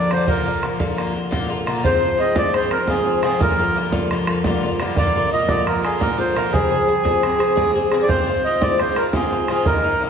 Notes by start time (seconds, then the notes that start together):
Already playing: F2 D3 F3 A#3 D5
0.11 G2 D3 A#3 D4 C5, bodhran
0.27 A#2 D3 A#3 F4 A#4, bodhran
0.46 D3 A#3 F4
0.62 A#2 D3 A#3 F4, bodhran
0.79 A#2 D3 A#3 F4, bodhran
0.97 A#2 D3 A#3 F4, bodhran
1.14 D3 A#3 F4
1.31 A#2 D3 A#3 F4, bodhran
1.41 bodhran
1.50 D3 A#3 F4
1.66 A#2 D3 A#3 F4, bodhran
1.84 F2 G#2 F3 C4 F4 C5, bodhran
2.02 F3 C4 F4
2.18 G#2 F3 C4 F4 D#5
2.36 G#2 F3 C4 F4 D5, bodhran
2.54 G#2 F3 C4 F4 C5, bodhran
2.70 F3 C4 F4 A#4, bodhran
2.87 G#2 F3 C4 F4 G#4, bodhran
2.96 bodhran
3.05 F3 C4 F4
3.22 G#2 F3 C4 F4 G#4, bodhran
3.39 G2 D3 A#3 F4 A#4, bodhran
3.59 D3 A#3 F4
3.75 G2 D3 A#3 F4
3.92 G2 D3 A#3 F4, bodhran
4.10 G2 D3 A#3 F4, bodhran
4.27 D3 A#3 F4, bodhran
4.44 G2 D3 A#3 F4, bodhran
4.53 bodhran
4.63 D3 A#3 F4
4.80 G2 D3 A#3 F4, bodhran
4.96 A#2 D3 A#3 F4 D5, bodhran
5.16 D3 A#3 F4
5.31 A#2 D3 A#3 F4 D#5
5.48 A#2 D3 A#3 F4 D5, bodhran
5.67 A#2 D3 A#3 F4 A#4, bodhran
5.83 D3 A#3 F4 G#4, bodhran
5.99 A#2 D3 A#3 F4 A#4, bodhran
6.11 bodhran
6.18 D3 A#3 F4 C5
6.35 A#2 D3 A#3 F4 A#4, bodhran
6.52 G2 F3 C4 G#4, bodhran
6.70 F3 C4 G#4
6.87 G2 F3 C4 G#4
7.04 G2 F3 C4 G#4, bodhran
7.22 G2 F3 C4 G#4, bodhran
7.39 F3 C4 G#4, bodhran
7.56 G2 F3 C4 G#4, bodhran
7.66 bodhran
7.75 F3 C4 G#4
7.92 G2 F3 C4 G#4, bodhran
8.03 D5
8.08 G#2 F3 C4 F4 C5, bodhran
8.27 F3 C4 F4
8.44 G#2 F3 C4 F4 D#5
8.62 G#2 F3 C4 F4 D5, bodhran
8.79 G#2 F3 C4 F4 C5, bodhran
8.96 F3 C4 F4 A#4, bodhran
9.13 G#2 F3 C4 F4 G#4, bodhran
9.23 bodhran
9.32 F3 C4 F4
9.48 G#2 F3 C4 F4 G#4, bodhran
9.65 G2 D#3 A#3 D#4 A#4, bodhran
9.84 D#3 A#3 D#4
10.01 G2 D#3 A#3 D#4